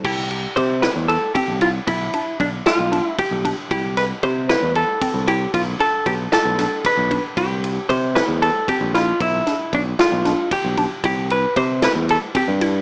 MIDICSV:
0, 0, Header, 1, 5, 480
1, 0, Start_track
1, 0, Tempo, 523560
1, 43, Time_signature, 7, 3, 24, 8
1, 11752, End_track
2, 0, Start_track
2, 0, Title_t, "Hollow-body jazz guitar"
2, 0, Program_c, 0, 26
2, 45, Note_on_c, 0, 67, 102
2, 514, Note_on_c, 0, 72, 98
2, 538, Note_off_c, 0, 67, 0
2, 751, Note_off_c, 0, 72, 0
2, 755, Note_on_c, 0, 71, 98
2, 820, Note_off_c, 0, 71, 0
2, 994, Note_on_c, 0, 69, 91
2, 1232, Note_off_c, 0, 69, 0
2, 1236, Note_on_c, 0, 67, 88
2, 1478, Note_off_c, 0, 67, 0
2, 1482, Note_on_c, 0, 65, 88
2, 1546, Note_off_c, 0, 65, 0
2, 1723, Note_on_c, 0, 64, 95
2, 2168, Note_off_c, 0, 64, 0
2, 2205, Note_on_c, 0, 62, 87
2, 2269, Note_off_c, 0, 62, 0
2, 2447, Note_on_c, 0, 65, 100
2, 2804, Note_off_c, 0, 65, 0
2, 2804, Note_on_c, 0, 64, 100
2, 2921, Note_off_c, 0, 64, 0
2, 2925, Note_on_c, 0, 67, 98
2, 3257, Note_off_c, 0, 67, 0
2, 3403, Note_on_c, 0, 67, 89
2, 3625, Note_off_c, 0, 67, 0
2, 3642, Note_on_c, 0, 71, 82
2, 3706, Note_off_c, 0, 71, 0
2, 3883, Note_on_c, 0, 72, 101
2, 4116, Note_off_c, 0, 72, 0
2, 4120, Note_on_c, 0, 71, 103
2, 4360, Note_off_c, 0, 71, 0
2, 4364, Note_on_c, 0, 69, 89
2, 4842, Note_on_c, 0, 67, 87
2, 4855, Note_off_c, 0, 69, 0
2, 5063, Note_off_c, 0, 67, 0
2, 5078, Note_on_c, 0, 65, 90
2, 5143, Note_off_c, 0, 65, 0
2, 5322, Note_on_c, 0, 69, 95
2, 5560, Note_on_c, 0, 67, 99
2, 5567, Note_off_c, 0, 69, 0
2, 5625, Note_off_c, 0, 67, 0
2, 5807, Note_on_c, 0, 69, 96
2, 6287, Note_off_c, 0, 69, 0
2, 6291, Note_on_c, 0, 71, 86
2, 6620, Note_off_c, 0, 71, 0
2, 6763, Note_on_c, 0, 67, 92
2, 7207, Note_off_c, 0, 67, 0
2, 7235, Note_on_c, 0, 72, 100
2, 7472, Note_off_c, 0, 72, 0
2, 7476, Note_on_c, 0, 71, 98
2, 7541, Note_off_c, 0, 71, 0
2, 7721, Note_on_c, 0, 69, 85
2, 7943, Note_off_c, 0, 69, 0
2, 7967, Note_on_c, 0, 67, 97
2, 8198, Note_off_c, 0, 67, 0
2, 8202, Note_on_c, 0, 65, 90
2, 8446, Note_off_c, 0, 65, 0
2, 8449, Note_on_c, 0, 64, 81
2, 8935, Note_on_c, 0, 62, 86
2, 8938, Note_off_c, 0, 64, 0
2, 8998, Note_off_c, 0, 62, 0
2, 9173, Note_on_c, 0, 65, 96
2, 9613, Note_off_c, 0, 65, 0
2, 9650, Note_on_c, 0, 67, 92
2, 9980, Note_off_c, 0, 67, 0
2, 10134, Note_on_c, 0, 67, 95
2, 10373, Note_on_c, 0, 71, 85
2, 10374, Note_off_c, 0, 67, 0
2, 10605, Note_off_c, 0, 71, 0
2, 10609, Note_on_c, 0, 72, 102
2, 10852, Note_off_c, 0, 72, 0
2, 10858, Note_on_c, 0, 71, 93
2, 10921, Note_off_c, 0, 71, 0
2, 11099, Note_on_c, 0, 69, 84
2, 11161, Note_off_c, 0, 69, 0
2, 11336, Note_on_c, 0, 67, 92
2, 11752, Note_off_c, 0, 67, 0
2, 11752, End_track
3, 0, Start_track
3, 0, Title_t, "Synth arpeggio sound"
3, 0, Program_c, 1, 84
3, 47, Note_on_c, 1, 64, 96
3, 353, Note_off_c, 1, 64, 0
3, 526, Note_on_c, 1, 67, 72
3, 679, Note_off_c, 1, 67, 0
3, 763, Note_on_c, 1, 64, 87
3, 1070, Note_off_c, 1, 64, 0
3, 1247, Note_on_c, 1, 60, 85
3, 1399, Note_off_c, 1, 60, 0
3, 1486, Note_on_c, 1, 64, 75
3, 1792, Note_off_c, 1, 64, 0
3, 1961, Note_on_c, 1, 62, 68
3, 2269, Note_off_c, 1, 62, 0
3, 2438, Note_on_c, 1, 65, 93
3, 2592, Note_off_c, 1, 65, 0
3, 2676, Note_on_c, 1, 62, 71
3, 2985, Note_off_c, 1, 62, 0
3, 3161, Note_on_c, 1, 62, 75
3, 3314, Note_off_c, 1, 62, 0
3, 3404, Note_on_c, 1, 64, 93
3, 3710, Note_off_c, 1, 64, 0
3, 3879, Note_on_c, 1, 67, 75
3, 4032, Note_off_c, 1, 67, 0
3, 4120, Note_on_c, 1, 64, 82
3, 4427, Note_off_c, 1, 64, 0
3, 4598, Note_on_c, 1, 60, 81
3, 4752, Note_off_c, 1, 60, 0
3, 4836, Note_on_c, 1, 64, 80
3, 5145, Note_off_c, 1, 64, 0
3, 5313, Note_on_c, 1, 62, 76
3, 5622, Note_off_c, 1, 62, 0
3, 5795, Note_on_c, 1, 65, 78
3, 5950, Note_off_c, 1, 65, 0
3, 6038, Note_on_c, 1, 62, 70
3, 6345, Note_off_c, 1, 62, 0
3, 6517, Note_on_c, 1, 62, 72
3, 6671, Note_off_c, 1, 62, 0
3, 6756, Note_on_c, 1, 64, 100
3, 7064, Note_off_c, 1, 64, 0
3, 7240, Note_on_c, 1, 67, 80
3, 7393, Note_off_c, 1, 67, 0
3, 7479, Note_on_c, 1, 64, 88
3, 7786, Note_off_c, 1, 64, 0
3, 7958, Note_on_c, 1, 60, 82
3, 8112, Note_off_c, 1, 60, 0
3, 8200, Note_on_c, 1, 64, 80
3, 8507, Note_off_c, 1, 64, 0
3, 8679, Note_on_c, 1, 62, 73
3, 8987, Note_off_c, 1, 62, 0
3, 9162, Note_on_c, 1, 65, 87
3, 9315, Note_off_c, 1, 65, 0
3, 9398, Note_on_c, 1, 62, 69
3, 9706, Note_off_c, 1, 62, 0
3, 9880, Note_on_c, 1, 62, 73
3, 10034, Note_off_c, 1, 62, 0
3, 10120, Note_on_c, 1, 64, 98
3, 10428, Note_off_c, 1, 64, 0
3, 10602, Note_on_c, 1, 67, 77
3, 10756, Note_off_c, 1, 67, 0
3, 10844, Note_on_c, 1, 64, 91
3, 11151, Note_off_c, 1, 64, 0
3, 11320, Note_on_c, 1, 60, 85
3, 11475, Note_off_c, 1, 60, 0
3, 11565, Note_on_c, 1, 64, 75
3, 11752, Note_off_c, 1, 64, 0
3, 11752, End_track
4, 0, Start_track
4, 0, Title_t, "Fingered electric bass"
4, 0, Program_c, 2, 33
4, 42, Note_on_c, 2, 36, 98
4, 414, Note_off_c, 2, 36, 0
4, 522, Note_on_c, 2, 48, 94
4, 801, Note_off_c, 2, 48, 0
4, 876, Note_on_c, 2, 40, 82
4, 1064, Note_off_c, 2, 40, 0
4, 1357, Note_on_c, 2, 36, 78
4, 1637, Note_off_c, 2, 36, 0
4, 1720, Note_on_c, 2, 35, 95
4, 1906, Note_off_c, 2, 35, 0
4, 2198, Note_on_c, 2, 35, 101
4, 2385, Note_off_c, 2, 35, 0
4, 2557, Note_on_c, 2, 35, 89
4, 2744, Note_off_c, 2, 35, 0
4, 3036, Note_on_c, 2, 35, 86
4, 3223, Note_off_c, 2, 35, 0
4, 3400, Note_on_c, 2, 36, 101
4, 3772, Note_off_c, 2, 36, 0
4, 3880, Note_on_c, 2, 48, 87
4, 4159, Note_off_c, 2, 48, 0
4, 4238, Note_on_c, 2, 40, 89
4, 4424, Note_off_c, 2, 40, 0
4, 4714, Note_on_c, 2, 36, 81
4, 4994, Note_off_c, 2, 36, 0
4, 5077, Note_on_c, 2, 35, 94
4, 5264, Note_off_c, 2, 35, 0
4, 5556, Note_on_c, 2, 35, 107
4, 5743, Note_off_c, 2, 35, 0
4, 5916, Note_on_c, 2, 35, 91
4, 6103, Note_off_c, 2, 35, 0
4, 6394, Note_on_c, 2, 35, 84
4, 6581, Note_off_c, 2, 35, 0
4, 6756, Note_on_c, 2, 36, 93
4, 7129, Note_off_c, 2, 36, 0
4, 7240, Note_on_c, 2, 48, 93
4, 7518, Note_off_c, 2, 48, 0
4, 7597, Note_on_c, 2, 40, 82
4, 7783, Note_off_c, 2, 40, 0
4, 8076, Note_on_c, 2, 34, 79
4, 8356, Note_off_c, 2, 34, 0
4, 8438, Note_on_c, 2, 35, 102
4, 8624, Note_off_c, 2, 35, 0
4, 8919, Note_on_c, 2, 35, 106
4, 9105, Note_off_c, 2, 35, 0
4, 9277, Note_on_c, 2, 35, 97
4, 9464, Note_off_c, 2, 35, 0
4, 9760, Note_on_c, 2, 35, 92
4, 9946, Note_off_c, 2, 35, 0
4, 10119, Note_on_c, 2, 36, 102
4, 10492, Note_off_c, 2, 36, 0
4, 10601, Note_on_c, 2, 48, 96
4, 10880, Note_off_c, 2, 48, 0
4, 10958, Note_on_c, 2, 40, 90
4, 11146, Note_off_c, 2, 40, 0
4, 11443, Note_on_c, 2, 43, 81
4, 11722, Note_off_c, 2, 43, 0
4, 11752, End_track
5, 0, Start_track
5, 0, Title_t, "Drums"
5, 41, Note_on_c, 9, 36, 117
5, 41, Note_on_c, 9, 49, 108
5, 133, Note_off_c, 9, 36, 0
5, 133, Note_off_c, 9, 49, 0
5, 280, Note_on_c, 9, 51, 51
5, 372, Note_off_c, 9, 51, 0
5, 520, Note_on_c, 9, 36, 80
5, 521, Note_on_c, 9, 51, 60
5, 612, Note_off_c, 9, 36, 0
5, 612, Note_off_c, 9, 51, 0
5, 759, Note_on_c, 9, 38, 99
5, 759, Note_on_c, 9, 51, 75
5, 851, Note_off_c, 9, 38, 0
5, 851, Note_off_c, 9, 51, 0
5, 1001, Note_on_c, 9, 51, 57
5, 1093, Note_off_c, 9, 51, 0
5, 1240, Note_on_c, 9, 36, 104
5, 1241, Note_on_c, 9, 51, 86
5, 1331, Note_off_c, 9, 36, 0
5, 1333, Note_off_c, 9, 51, 0
5, 1475, Note_on_c, 9, 51, 62
5, 1567, Note_off_c, 9, 51, 0
5, 1718, Note_on_c, 9, 51, 95
5, 1719, Note_on_c, 9, 36, 112
5, 1810, Note_off_c, 9, 51, 0
5, 1811, Note_off_c, 9, 36, 0
5, 1957, Note_on_c, 9, 51, 58
5, 2049, Note_off_c, 9, 51, 0
5, 2199, Note_on_c, 9, 36, 82
5, 2201, Note_on_c, 9, 51, 64
5, 2291, Note_off_c, 9, 36, 0
5, 2293, Note_off_c, 9, 51, 0
5, 2440, Note_on_c, 9, 38, 100
5, 2440, Note_on_c, 9, 51, 71
5, 2532, Note_off_c, 9, 38, 0
5, 2532, Note_off_c, 9, 51, 0
5, 2683, Note_on_c, 9, 51, 58
5, 2774, Note_off_c, 9, 51, 0
5, 2919, Note_on_c, 9, 51, 86
5, 2921, Note_on_c, 9, 36, 112
5, 3011, Note_off_c, 9, 51, 0
5, 3012, Note_off_c, 9, 36, 0
5, 3161, Note_on_c, 9, 36, 76
5, 3163, Note_on_c, 9, 51, 66
5, 3253, Note_off_c, 9, 36, 0
5, 3255, Note_off_c, 9, 51, 0
5, 3401, Note_on_c, 9, 36, 116
5, 3401, Note_on_c, 9, 51, 91
5, 3492, Note_off_c, 9, 36, 0
5, 3493, Note_off_c, 9, 51, 0
5, 3640, Note_on_c, 9, 38, 28
5, 3640, Note_on_c, 9, 51, 60
5, 3732, Note_off_c, 9, 38, 0
5, 3732, Note_off_c, 9, 51, 0
5, 3877, Note_on_c, 9, 51, 59
5, 3879, Note_on_c, 9, 36, 77
5, 3969, Note_off_c, 9, 51, 0
5, 3971, Note_off_c, 9, 36, 0
5, 4121, Note_on_c, 9, 38, 96
5, 4121, Note_on_c, 9, 51, 75
5, 4212, Note_off_c, 9, 38, 0
5, 4212, Note_off_c, 9, 51, 0
5, 4357, Note_on_c, 9, 51, 58
5, 4449, Note_off_c, 9, 51, 0
5, 4597, Note_on_c, 9, 51, 89
5, 4598, Note_on_c, 9, 36, 116
5, 4689, Note_off_c, 9, 51, 0
5, 4690, Note_off_c, 9, 36, 0
5, 4838, Note_on_c, 9, 51, 62
5, 4930, Note_off_c, 9, 51, 0
5, 5078, Note_on_c, 9, 36, 117
5, 5080, Note_on_c, 9, 51, 92
5, 5170, Note_off_c, 9, 36, 0
5, 5171, Note_off_c, 9, 51, 0
5, 5319, Note_on_c, 9, 51, 54
5, 5411, Note_off_c, 9, 51, 0
5, 5556, Note_on_c, 9, 36, 77
5, 5557, Note_on_c, 9, 51, 71
5, 5648, Note_off_c, 9, 36, 0
5, 5649, Note_off_c, 9, 51, 0
5, 5798, Note_on_c, 9, 38, 96
5, 5798, Note_on_c, 9, 51, 74
5, 5890, Note_off_c, 9, 38, 0
5, 5890, Note_off_c, 9, 51, 0
5, 6038, Note_on_c, 9, 38, 31
5, 6038, Note_on_c, 9, 51, 68
5, 6130, Note_off_c, 9, 38, 0
5, 6130, Note_off_c, 9, 51, 0
5, 6276, Note_on_c, 9, 38, 36
5, 6276, Note_on_c, 9, 51, 93
5, 6277, Note_on_c, 9, 36, 104
5, 6368, Note_off_c, 9, 36, 0
5, 6368, Note_off_c, 9, 38, 0
5, 6368, Note_off_c, 9, 51, 0
5, 6517, Note_on_c, 9, 36, 68
5, 6519, Note_on_c, 9, 51, 66
5, 6609, Note_off_c, 9, 36, 0
5, 6610, Note_off_c, 9, 51, 0
5, 6758, Note_on_c, 9, 36, 127
5, 6760, Note_on_c, 9, 51, 97
5, 6849, Note_off_c, 9, 36, 0
5, 6852, Note_off_c, 9, 51, 0
5, 7002, Note_on_c, 9, 51, 61
5, 7094, Note_off_c, 9, 51, 0
5, 7239, Note_on_c, 9, 36, 78
5, 7242, Note_on_c, 9, 51, 62
5, 7330, Note_off_c, 9, 36, 0
5, 7333, Note_off_c, 9, 51, 0
5, 7483, Note_on_c, 9, 38, 107
5, 7483, Note_on_c, 9, 51, 75
5, 7574, Note_off_c, 9, 38, 0
5, 7574, Note_off_c, 9, 51, 0
5, 7722, Note_on_c, 9, 51, 59
5, 7813, Note_off_c, 9, 51, 0
5, 7959, Note_on_c, 9, 36, 114
5, 7963, Note_on_c, 9, 51, 81
5, 8051, Note_off_c, 9, 36, 0
5, 8054, Note_off_c, 9, 51, 0
5, 8206, Note_on_c, 9, 38, 35
5, 8206, Note_on_c, 9, 51, 60
5, 8298, Note_off_c, 9, 38, 0
5, 8298, Note_off_c, 9, 51, 0
5, 8439, Note_on_c, 9, 36, 126
5, 8442, Note_on_c, 9, 51, 82
5, 8531, Note_off_c, 9, 36, 0
5, 8533, Note_off_c, 9, 51, 0
5, 8681, Note_on_c, 9, 38, 31
5, 8681, Note_on_c, 9, 51, 57
5, 8773, Note_off_c, 9, 38, 0
5, 8773, Note_off_c, 9, 51, 0
5, 8919, Note_on_c, 9, 36, 82
5, 8920, Note_on_c, 9, 51, 58
5, 9011, Note_off_c, 9, 36, 0
5, 9012, Note_off_c, 9, 51, 0
5, 9160, Note_on_c, 9, 38, 104
5, 9160, Note_on_c, 9, 51, 79
5, 9252, Note_off_c, 9, 38, 0
5, 9252, Note_off_c, 9, 51, 0
5, 9399, Note_on_c, 9, 38, 35
5, 9399, Note_on_c, 9, 51, 57
5, 9491, Note_off_c, 9, 38, 0
5, 9491, Note_off_c, 9, 51, 0
5, 9639, Note_on_c, 9, 36, 117
5, 9639, Note_on_c, 9, 51, 95
5, 9730, Note_off_c, 9, 36, 0
5, 9730, Note_off_c, 9, 51, 0
5, 9876, Note_on_c, 9, 51, 68
5, 9878, Note_on_c, 9, 36, 75
5, 9968, Note_off_c, 9, 51, 0
5, 9970, Note_off_c, 9, 36, 0
5, 10119, Note_on_c, 9, 36, 125
5, 10120, Note_on_c, 9, 51, 95
5, 10211, Note_off_c, 9, 36, 0
5, 10212, Note_off_c, 9, 51, 0
5, 10361, Note_on_c, 9, 51, 61
5, 10453, Note_off_c, 9, 51, 0
5, 10601, Note_on_c, 9, 36, 84
5, 10601, Note_on_c, 9, 51, 72
5, 10692, Note_off_c, 9, 36, 0
5, 10693, Note_off_c, 9, 51, 0
5, 10839, Note_on_c, 9, 38, 111
5, 10839, Note_on_c, 9, 51, 86
5, 10930, Note_off_c, 9, 38, 0
5, 10930, Note_off_c, 9, 51, 0
5, 11084, Note_on_c, 9, 51, 59
5, 11175, Note_off_c, 9, 51, 0
5, 11320, Note_on_c, 9, 51, 85
5, 11322, Note_on_c, 9, 36, 115
5, 11412, Note_off_c, 9, 51, 0
5, 11414, Note_off_c, 9, 36, 0
5, 11562, Note_on_c, 9, 51, 66
5, 11654, Note_off_c, 9, 51, 0
5, 11752, End_track
0, 0, End_of_file